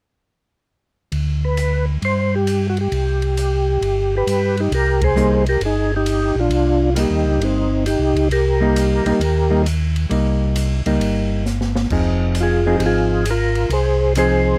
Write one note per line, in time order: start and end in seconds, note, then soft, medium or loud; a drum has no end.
1.12 1.98 D2 medium
1.12 ride soft
1.45 1.86 B4 medium
1.57 hi-hat pedal soft
1.57 ride soft
2.02 2.88 G2 medium
2.02 2.35 C5 medium
2.02 ride soft
2.35 2.67 G4 medium
2.47 hi-hat pedal soft
2.47 ride medium
2.69 2.78 F#4 soft
2.77 4.15 G4 medium
2.77 ride soft
2.92 3.78 C2 medium
2.92 ride soft
3.22 ride soft
3.37 hi-hat pedal medium
3.37 ride medium
3.81 4.23 G1 medium
3.81 ride soft
4.17 4.56 G4 medium
4.17 4.61 B4 medium
4.26 4.69 G2 medium
4.26 hi-hat pedal soft
4.26 ride medium
4.57 4.73 D#4 medium
4.57 4.73 G4 medium
4.57 ride soft
4.71 5.57 C2 medium
4.71 5.01 G4 medium
4.71 5.04 A#4 medium
4.71 ride medium
5.02 5.45 G#4 medium
5.02 5.45 C5 loud
5.02 kick medium
5.02 ride medium
5.16 5.43 G3 medium
5.16 5.44 A#3 medium
5.16 5.44 D#4 medium
5.16 hi-hat pedal medium
5.46 5.62 G4 medium
5.46 5.63 A#4 medium
5.46 ride soft
5.60 6.32 G1 medium
5.60 ride medium
5.65 5.92 D#4 medium
5.65 5.94 G#4 medium
5.96 6.36 D#4 medium
5.96 6.40 G4 medium
6.06 hi-hat pedal soft
6.06 ride medium
6.35 6.50 A#1 medium
6.39 6.90 D4 medium
6.39 6.94 F4 medium
6.49 7.06 C2 medium
6.49 ride medium
6.95 7.65 G3 soft
6.95 7.66 A#3 medium
6.95 7.66 D#4 medium
6.95 6.98 F4 medium
6.95 hi-hat pedal medium
6.95 ride medium
6.99 7.40 D#4 medium
6.99 7.44 G4 medium
7.10 7.25 D#2 medium
7.24 7.39 C#2 medium
7.40 7.96 G1 medium
7.40 7.86 D#4 medium
7.40 ride soft
7.44 7.85 C4 medium
7.86 8.29 D#4 medium
7.86 8.28 G4 medium
7.86 hi-hat pedal soft
7.86 ride medium
7.99 8.14 C2 medium
8.14 8.29 C#2 medium
8.14 ride soft
8.29 9.01 C2 medium
8.29 9.63 G4 medium
8.29 9.63 A#4 medium
8.29 ride medium
8.61 9.03 G3 medium
8.61 9.03 A#3 medium
8.61 9.04 D#4 medium
8.76 hi-hat pedal medium
8.76 ride medium
9.05 9.13 C2 soft
9.05 9.20 G3 medium
9.05 9.20 A#3 medium
9.05 9.20 D#4 medium
9.05 ride soft
9.20 10.06 D#2 medium
9.20 ride medium
9.50 9.64 G3 medium
9.50 9.64 A#3 medium
9.50 9.65 D#4 medium
9.66 hi-hat pedal medium
9.66 ride medium
9.96 ride soft
10.10 10.82 C2 medium
10.10 10.79 G3 soft
10.10 10.80 A#3 medium
10.10 10.80 D#4 medium
10.10 ride soft
10.56 hi-hat pedal medium
10.56 ride medium
10.86 11.00 C#2 medium
10.86 11.43 G3 medium
10.86 11.43 A#3 medium
10.86 11.43 D#4 medium
10.86 ride soft
11.00 11.87 G1 medium
11.00 ride medium
11.46 snare soft
11.46 hi-hat pedal medium
11.61 snare medium
11.76 snare medium
11.90 12.77 F1 medium
11.90 12.60 F3 soft
11.90 12.61 C4 soft
11.90 12.60 D#4 medium
11.90 12.61 G#4 medium
11.90 kick medium
11.90 crash medium
12.35 hi-hat pedal medium
12.35 ride medium
12.41 12.76 F4 medium
12.41 12.77 G#4 medium
12.66 13.23 F3 medium
12.66 13.23 C4 medium
12.66 13.23 D#4 medium
12.66 13.23 G#4 medium
12.79 13.66 G#1 medium
12.79 12.83 G4 medium
12.79 ride medium
12.86 13.25 F4 medium
12.86 13.30 G#4 medium
13.25 hi-hat pedal medium
13.25 ride medium
13.30 13.70 F4 medium
13.30 13.74 A#4 medium
13.55 ride soft
13.69 14.56 C2 medium
13.69 14.13 G#4 medium
13.69 14.14 C5 medium
13.69 ride medium
14.15 14.59 F3 medium
14.15 14.59 C4 soft
14.15 14.59 D#4 medium
14.15 14.59 G#4 medium
14.15 14.59 C5 medium
14.15 hi-hat pedal medium
14.15 ride medium